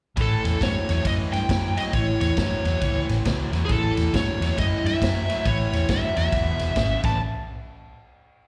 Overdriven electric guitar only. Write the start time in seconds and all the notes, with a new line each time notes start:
0.16 A2 E3
0.61 A2 F#3
0.89 A2 F#3
1.04 A2 E3
1.49 A2 F#3
1.77 A2 F#3
1.92 A2 E3
2.37 A2 F#3
2.64 A2 F#3
2.81 A2 E3
3.25 A2 F#3
3.52 A2 F#3
3.68 A2 E3
4.13 A2 F#3
4.41 A2 F#3
4.56 A2 E3
5.00 A2 F#3
5.28 A2 F#3
5.45 A2 E3
5.88 A2 F#3
6.16 A2 F#3
6.33 E2 B2
6.76 E2 C#3
7.03 A3 C#4 G4 B4